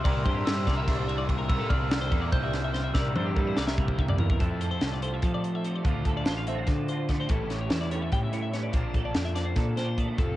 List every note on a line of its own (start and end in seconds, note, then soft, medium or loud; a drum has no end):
0.00 0.45 G3 medium
0.00 0.23 C6 loud
0.04 0.24 C2 medium
0.04 0.65 C3 medium
0.04 1.08 C3 medium
0.04 0.67 G3 loud
0.04 0.68 A#3 medium
0.04 0.69 E4 loud
0.04 0.66 A#4 medium
0.04 0.25 D5 medium
0.04 kick loud
0.04 ride loud
0.24 0.45 G2 loud
0.24 0.87 D4 medium
0.24 0.36 C5 medium
0.24 0.46 C6 medium
0.24 kick medium
0.24 ride medium
0.35 0.46 G4 medium
0.45 0.66 G2 medium
0.45 1.91 G3 medium
0.45 0.57 A4 medium
0.45 1.25 E6 loud
0.45 snare loud
0.45 ride loud
0.57 0.67 C5 medium
0.65 0.86 C2 loud
0.65 1.48 C3 medium
0.65 1.49 G3 medium
0.65 1.51 A#3 medium
0.65 1.50 A#4 medium
0.65 0.77 D5 medium
0.65 kick medium
0.65 snare soft
0.65 ride medium
0.70 1.52 E4 medium
0.77 0.98 E5 medium
0.88 1.26 C2 medium
0.88 1.52 D4 medium
0.88 kick loud
0.88 snare soft
0.88 ride loud
0.98 1.08 C5 medium
1.08 1.47 G2 medium
1.08 1.18 E5 medium
1.08 ride medium
1.18 1.29 D5 medium
1.29 1.49 C2 medium
1.29 1.37 A#4 medium
1.29 kick medium
1.29 ride medium
1.39 1.49 A#4 medium
1.49 1.60 C2 loud
1.49 2.15 C3 medium
1.49 2.53 C3 medium
1.49 2.13 G3 medium
1.49 2.12 A#3 loud
1.49 2.11 E4 medium
1.49 2.12 A#4 medium
1.49 1.71 E6 medium
1.49 kick loud
1.49 ride loud
1.60 1.70 A4 medium
1.70 2.09 C2 medium
1.70 2.32 D4 medium
1.70 1.91 D5 medium
1.70 2.28 F6 medium
1.70 kick medium
1.70 ride medium
1.91 2.92 G3 medium
1.91 snare loud
1.91 ride medium
2.01 2.12 C5 medium
2.11 2.31 E2 medium
2.11 2.94 G3 medium
2.11 2.94 A#3 medium
2.11 2.98 E4 medium
2.11 2.22 A4 medium
2.11 2.92 A#4 medium
2.11 kick medium
2.11 ride medium
2.15 2.93 C3 medium
2.22 2.32 D5 medium
2.32 2.91 C2 medium
2.32 2.93 D4 medium
2.32 2.43 C5 medium
2.32 2.96 G6 loud
2.32 kick loud
2.32 ride medium
2.44 2.54 E5 medium
2.53 2.92 G2 medium
2.53 2.64 C5 medium
2.53 snare soft
2.53 ride medium
2.64 2.73 E5 medium
2.74 2.84 C5 medium
2.74 snare soft
2.74 ride medium
2.84 2.94 E5 medium
2.94 3.14 C2 medium
2.94 3.77 C3 medium
2.94 3.55 C3 medium
2.94 3.56 G3 medium
2.94 3.57 A#3 loud
2.94 3.56 A#4 medium
2.94 3.15 D5 medium
2.94 4.14 E6 medium
2.94 kick loud
2.94 snare medium
2.98 3.57 E4 loud
3.15 3.35 G2 loud
3.15 4.38 D4 medium
3.15 3.26 C5 medium
3.15 high tom medium
3.26 3.36 G4 medium
3.36 3.56 G2 medium
3.36 4.37 G3 medium
3.36 3.47 A4 medium
3.36 kick medium
3.47 3.57 C5 medium
3.56 3.77 C2 loud
3.56 4.38 C3 medium
3.56 4.39 G3 medium
3.56 4.39 A#3 medium
3.56 4.40 E4 medium
3.56 4.38 A#4 medium
3.56 3.67 D5 medium
3.56 snare medium
3.67 3.88 E5 medium
3.67 snare medium
3.78 4.16 C2 medium
3.78 3.98 C3 medium
3.78 kick loud
3.88 3.99 C5 medium
3.88 kick medium
3.98 4.18 D3 medium
3.98 4.09 E5 medium
3.98 kick medium
4.08 4.19 D5 medium
4.08 floor tom medium
4.18 4.39 E2 medium
4.18 4.39 E3 medium
4.18 4.30 A#4 medium
4.18 floor tom loud
4.30 4.40 A#4 medium
4.30 kick medium
4.38 5.84 F2 medium
4.38 4.78 F2 medium
4.38 5.83 F3 medium
4.38 5.84 A3 medium
4.38 5.84 C4 medium
4.38 4.81 E4 medium
4.38 5.85 F4 medium
4.38 4.61 A4 medium
4.38 kick medium
4.38 closed hi-hat medium
4.61 5.22 A4 medium
4.61 4.70 C5 medium
4.61 closed hi-hat medium
4.71 4.92 C5 medium
4.81 5.19 C2 medium
4.81 snare loud
4.81 closed hi-hat medium
4.92 5.02 D5 medium
5.02 6.46 F3 medium
5.02 5.64 A3 medium
5.02 5.14 C5 medium
5.02 closed hi-hat medium
5.14 5.24 E5 medium
5.22 5.81 F3 medium
5.22 6.06 A4 medium
5.22 5.33 F5 medium
5.22 kick medium
5.22 closed hi-hat medium
5.34 5.44 D5 medium
5.44 5.55 C5 medium
5.44 closed hi-hat soft
5.55 5.65 E5 medium
5.64 5.84 C3 medium
5.64 6.47 A3 soft
5.64 5.76 C5 medium
5.64 closed hi-hat medium
5.76 5.86 D5 medium
5.83 6.23 D2 medium
5.83 7.28 D3 medium
5.83 7.27 D3 medium
5.83 7.30 A3 medium
5.83 7.29 D4 medium
5.83 6.25 F4 medium
5.83 7.29 F4 medium
5.83 6.07 C5 medium
5.83 kick loud
5.83 closed hi-hat medium
6.05 7.51 A4 medium
6.05 6.16 A4 medium
6.05 kick medium
6.05 closed hi-hat medium
6.17 6.27 D5 medium
6.26 6.64 A1 medium
6.26 6.88 F4 medium
6.26 6.37 C5 medium
6.26 snare loud
6.26 closed hi-hat medium
6.37 6.47 F5 medium
6.47 7.30 F3 medium
6.47 7.09 C4 medium
6.47 6.58 E5 medium
6.47 closed hi-hat medium
6.58 6.68 C5 medium
6.67 7.26 D3 medium
6.67 6.88 A4 medium
6.67 kick medium
6.67 snare soft
6.67 closed hi-hat medium
6.88 7.28 F4 medium
6.88 7.09 C5 medium
6.88 closed hi-hat medium
7.08 7.27 A2 medium
7.08 7.20 A3 medium
7.08 7.20 D5 medium
7.08 kick medium
7.08 snare soft
7.08 closed hi-hat medium
7.20 7.30 C4 soft
7.20 7.30 C5 medium
7.29 7.68 A1 medium
7.29 8.71 A2 medium
7.29 8.72 A2 medium
7.29 8.72 E3 medium
7.29 8.73 G3 medium
7.29 8.74 C#4 medium
7.29 7.71 E4 medium
7.29 8.74 E4 medium
7.29 7.51 A4 medium
7.29 kick loud
7.29 closed hi-hat medium
7.50 8.11 G4 medium
7.50 7.60 C#5 medium
7.50 snare soft
7.50 closed hi-hat medium
7.61 7.80 C#5 medium
7.70 8.10 E2 medium
7.70 8.31 E4 medium
7.70 snare loud
7.70 closed hi-hat medium
7.81 7.91 D5 medium
7.91 8.77 A3 medium
7.91 8.53 C#4 medium
7.91 8.02 C#5 medium
7.91 closed hi-hat medium
8.02 8.12 E5 medium
8.12 8.70 A2 medium
8.12 8.72 G4 medium
8.12 8.23 G5 medium
8.12 kick medium
8.12 closed hi-hat medium
8.23 8.33 E5 medium
8.32 8.71 E4 medium
8.32 8.44 C#5 medium
8.32 closed hi-hat medium
8.42 8.53 E5 medium
8.53 8.71 E3 medium
8.53 8.72 C#4 medium
8.53 8.63 C#5 medium
8.53 snare soft
8.53 closed hi-hat medium
8.63 8.74 D5 medium
8.72 9.12 A#1 medium
8.72 10.16 A#2 medium
8.72 10.17 A#2 medium
8.72 10.16 F3 medium
8.72 10.17 A#3 medium
8.72 10.18 D4 medium
8.72 9.14 D4 medium
8.72 8.95 C5 medium
8.72 kick loud
8.72 closed hi-hat medium
8.76 10.20 F4 medium
8.94 9.05 A4 medium
8.94 9.56 A4 medium
8.94 kick medium
8.94 closed hi-hat medium
9.05 9.15 D5 medium
9.15 9.54 F2 medium
9.15 9.77 D4 medium
9.15 9.26 A#4 medium
9.15 snare loud
9.15 closed hi-hat medium
9.25 9.35 E5 medium
9.36 9.98 F3 medium
9.36 9.46 D5 medium
9.36 snare soft
9.36 closed hi-hat medium
9.46 9.56 C5 medium
9.56 10.15 A#2 medium
9.56 9.77 A4 medium
9.56 10.37 A4 medium
9.56 kick loud
9.56 snare soft
9.56 closed hi-hat medium
9.77 9.87 C4 medium
9.77 9.98 C5 medium
9.77 snare soft
9.77 closed hi-hat medium
9.87 10.19 D4 soft
9.98 10.37 F3 medium
9.98 10.37 A3 medium
9.98 10.08 D5 medium
9.98 kick medium
9.98 closed hi-hat medium
10.08 10.19 C5 medium
10.17 10.37 F1 medium
10.17 10.37 F2 medium
10.17 10.37 F3 medium
10.17 10.37 A3 medium
10.17 10.37 C4 medium
10.17 10.37 F4 medium
10.17 10.37 A4 medium
10.17 kick loud
10.17 closed hi-hat medium